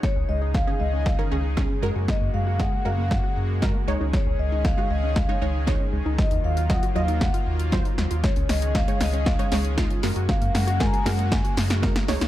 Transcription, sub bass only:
\new Staff \with { instrumentName = "Sub bass" } { \clef bass \time 4/4 \key des \major \tempo 4 = 117 r16 des,16 des,4 des,4 des,4 ges,16 ges,16~ | ges,16 ges,16 ges,4 ges,4 ges,4 des,16 des,16~ | des,16 des,16 des,4 des,4 des,4 des,16 des,16~ | des,16 ees,16 ees,4 ees,4 ees,4 ees,16 ees,16~ |
ees,16 des,16 des,4 des,4 des,4 ges,16 ges,16~ | ges,16 ges,16 ges,4 ges,4 ges,4 des,16 des,16 | }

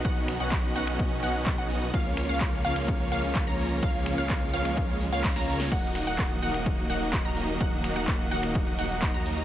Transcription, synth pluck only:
\new Staff \with { instrumentName = "Synth pluck" } { \time 4/4 \key ees \minor \tempo 4 = 127 fis''8. fis''8. fis''4 fis''8. fis''8. | f''8. f''8. f''4 f''8. bes''8. | f''8. f''8. f''4 r16 f''8 bes''8. | ges''8. ges''8. ges''4 ges''8. bes''8. |
ges''8. ges''8. ges''4 ges''8. bes''8. | }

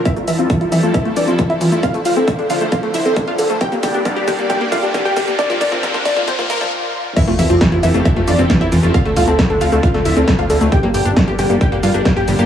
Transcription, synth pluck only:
\new Staff \with { instrumentName = "Synth pluck" } { \time 4/4 \key f \major \tempo 4 = 135 <e' e''>16 f'16 <e' e''>16 f'16 r16 f'16 <e' e''>16 f'16 <e' e''>16 f'16 <d' d''>16 f'16 f'16 <e' e''>16 f'16 f'16 | <f' f''>16 a'16 <f' f''>16 a'16 r16 a'16 <f' f''>16 a'16 <f' f''>16 a'16 <e' e''>16 a'16 a'16 <f' f''>16 a'16 a'16 | <g' g''>16 g'16 <g' g''>16 g'16 r16 g'16 <g' g''>16 g'16 <g' g''>16 g'16 <f' f''>16 g'16 g'16 <g' g''>16 g'16 g'16 | <d' d''>16 f'16 <d' d''>16 f'16 r16 f'16 <d' d''>16 f'16 <c' c''>16 f'16 <bes bes'>16 f'16 r4 |
<e' e''>16 f'16 <e' e''>16 f'16 r16 f'16 <e' e''>16 f'16 <e' e''>16 f'16 <d' d''>16 f'16 f'16 <e' e''>16 f'16 f'16 | <f' f''>16 a'16 <f' f''>16 a'16 r16 a'16 <f' f''>16 a'16 <f' f''>16 a'16 <e' e''>16 a'16 a'16 <f' f''>16 a'16 a'16 | <g' g''>16 g'16 <g' g''>16 g'16 r16 g'16 <g' g''>16 g'16 <g' g''>16 g'16 <f' f''>16 g'16 g'16 <g' g''>16 g'16 g'16 | }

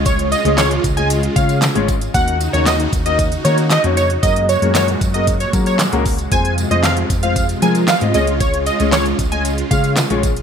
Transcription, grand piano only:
\new Staff \with { instrumentName = "Grand piano" } { \time 4/4 \key des \major \tempo 4 = 115 <aes des' f' aes' des''>8 r16 <aes des' f' aes' des''>8 r8 <aes des' f' aes' ees''>8 r16 <aes des' f' aes' des''>8 r16 <aes des' f' aes' des''>8 r16 | <bes des' ees' ges' bes'>8 r16 <bes des' ees' ges' des''>8 r8 <bes des' ees' ges' bes'>8 r16 <bes des' ees' ges' bes'>8 r16 <bes des' ees' ges' des''>8 r16 | <bes des' ges' aes' bes'>8 r16 <bes des' ges' aes' bes'>8 r8 <bes des' ges' aes' bes'>8 r16 <bes des' ges' aes' bes'>8 r16 <bes des' ges' aes' bes'>8 r16 | <aes c' f' aes' c''>8 r16 <aes c' f' aes' c''>8 r8 <aes c' f' aes' c''>8 r16 <aes c' f' aes' bes'>8 r16 <aes c' f' aes' ees''>16 <aes des' f' aes' des''>8~ |
<aes des' f' aes' des''>8 r16 <aes des' f' aes' des''>8 r8 <aes des' f' aes' ees''>8 r16 <aes des' f' aes' des''>8 r16 <aes des' f' aes' des''>8 r16 | }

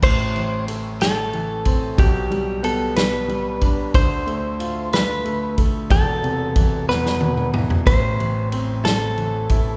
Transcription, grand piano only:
\new Staff \with { instrumentName = "Grand piano" } { \clef bass \time 6/8 \key a \minor \tempo 4. = 61 <a,, a,>8 e8 a4 e8 c'8 | <b,, b,>8 g8 b4 g8 d'8 | <d, d>8 a8 f'4 a8 a'8 | <e,, e,>8 c8 e8 <e,, e,>8 b,8 e8 |
<a,, a,>8 e8 c'4 e8 e'8 | }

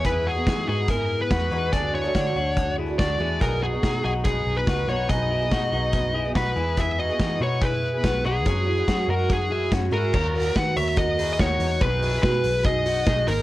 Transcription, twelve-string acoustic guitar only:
\new Staff \with { instrumentName = "Twelve-string acoustic guitar" } { \time 4/4 \key b \major \tempo 4 = 143 <e gis b e' gis'>8. <e gis b e' gis'>8. <gis b e' gis'>8 <gis b e' gis'>8. <b e' gis'>8. <e gis b e' gis'>8 | <d a d' fis' a'>8. <d a d' fis' a'>8. <a d' fis' a'>8 <a d' fis' a'>8. <d' fis' a'>8. <d a d' fis' a'>8 | <b, dis fis b dis' gis'>8. <b, dis fis b dis' gis'>8. <fis b dis' gis'>8 <fis b dis' gis'>8. <fis b dis' gis'>8. <b, dis fis b dis' gis'>8 | <b, dis fis b dis' gis'>8. <b, dis fis b dis' gis'>8. <fis b dis' gis'>8 <fis b dis' gis'>8. <fis b dis' gis'>8. <e gis b e' gis'>8 |
<e gis b e' gis'>8. <e gis b e' gis'>8. <gis b e' gis'>8 <gis b e' gis'>8. <b e' gis'>8. <e gis b e' gis'>8 | <fis gis cis' fis'>8. <fis gis cis' fis'>8. <fis gis cis' fis'>8 <fis gis cis' fis'>8. <gis cis' fis'>8. <fis gis cis' fis'>8 | <dis ais cis' fis'>8. <ais cis' fis'>4.~ <ais cis' fis'>16 <dis ais cis' fis'>8 <dis ais cis' fis'>8 <dis ais cis' fis'>8 | <b, dis gis dis' fis'>8. <gis dis' fis'>4.~ <gis dis' fis'>16 <dis gis dis' fis'>8 <dis gis dis' fis'>8 <gis ais dis' gis'>8 | }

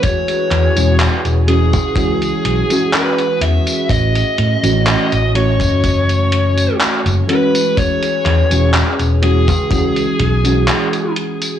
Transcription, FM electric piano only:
\new Staff \with { instrumentName = "FM electric piano" } { \time 4/4 \key e \major \tempo 4 = 62 <e gis cis' fis'>8. <e gis cis' fis'>8 r16 <e gis cis' fis'>16 r16 <e gis cis' fis'>8. <e gis cis' fis'>4~ <e gis cis' fis'>16 | r8. <e a cis' fis'>8. <e a cis' fis'>2 <e gis cis' fis'>8~ | <e gis cis' fis'>8. <e gis cis' fis'>8 r16 <e gis cis' fis'>16 r16 <e gis cis' fis'>8. <e gis cis' fis'>4~ <e gis cis' fis'>16 | }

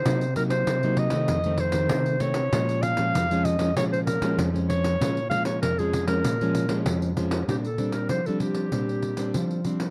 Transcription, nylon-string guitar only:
\new Staff \with { instrumentName = "Nylon-string guitar" } { \clef bass \time 4/4 \key bes \minor \tempo 4 = 97 << { <ges bes ees'>16 r16 <ges bes ees'>8. <ges bes ees'>8 <ees a c'>8 <ees a c'>8 <ees a c'>8. <ees a c'>16 r16 | <f aes des'>8. <f aes des'>8 <f aes des'>8 <f aes des'>16 <f aes des'>8. <f aes des'>8 <f aes des'>8. | <f aes des'>16 r16 <f aes des'>8. <f aes des'>8 <f aes des'>8 <f aes des'>8 <f aes des'>8. <f aes des'>8 | \key bes \major <g c' d'>16 r16 <g c' d'>8. <g c' d'>8. <g c' d'>8. <g c' d'>8. <g c' d'>8 | } \\ { c4 c4 f,4 c4 | bes,4 f,4 bes,4 f,4 | bes,4 f,4 bes,4 f,4 | bes,4 f4 bes,4 f4 | } >> }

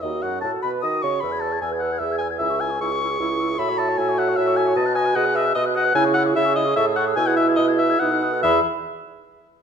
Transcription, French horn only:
\new Staff \with { instrumentName = "French horn" } { \time 3/4 \key e \major \tempo 4 = 151 fis'4 fis'2 | gis'4 b'4 gis'4 | gis'2 e'4 | fis'2.~ |
fis'4 gis'4 fis'4 | e'4 gis'4. r8 | e'2 dis'8 r8 | e8 r2 r8 | }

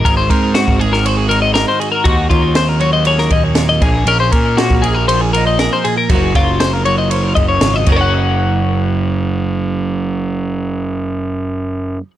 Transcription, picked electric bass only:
\new Staff \with { instrumentName = "Picked electric bass" } { \clef bass \time 4/4 \key ges \lydian \tempo 4 = 118 aes,,8 aes,8. aes,,2 r8. | ees,8 ees,2 ees,4 bes,,8 | bes,,8 bes,8. bes,,2 r8. | ges,,8 ges,,2 ges,,8 aes,,8 ges,,8~ |
ges,,1~ | ges,,1 | }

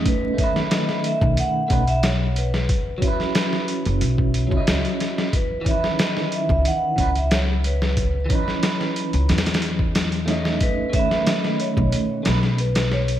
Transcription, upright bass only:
\new Staff \with { instrumentName = "Upright bass" } { \clef bass \time 4/4 \key cis \minor \tempo 4 = 91 r4. r16 b,,16 r8 b,,4. | r4. r16 fis,,16 b,,8. cis,16 cis,16 r8. | r4. r16 cis,16 r8 cis,4.~ | cis,8 r4 r16 cis,16 e,2 |
r4. r16 b,,16 r8 b,,4. | }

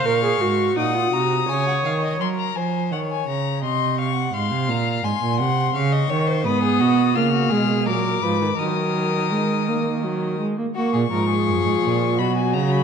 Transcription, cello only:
\new Staff \with { instrumentName = "Cello" } { \clef bass \time 3/4 \key dis \minor \tempo 4 = 84 ais,8 gis,8 ais,8 bis,8 cis8 dis8 | fis8 eis8 dis8 cis8 c4 | aes,16 c16 ais,8 aes,16 ais,16 c8 cis8 dis8 | \key ees \minor aes,8 ces8 des8 ces8 bes,8 aes,8 |
ees2~ ees8 r8 | r16 bes,16 aes,8 ges,16 aes,16 bes,8 b,8 des8 | }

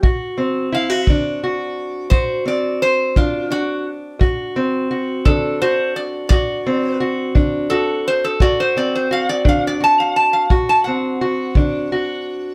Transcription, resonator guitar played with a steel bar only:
\new Staff \with { instrumentName = "Resonator guitar played with a steel bar" } { \time 12/8 \key d \mixolydian \tempo 4. = 57 r4 f''8 d''4. c''8 d''8 c''8 f'8 fis'8 r8 | r4. a'8 c''8 d''8 d''4 r4 a'8 c''16 a'16 | d''16 c''16 d''16 c''16 f''16 d''16 f''16 d''16 a''16 f''16 a''16 f''16 r16 a''16 fis''2~ fis''8 | }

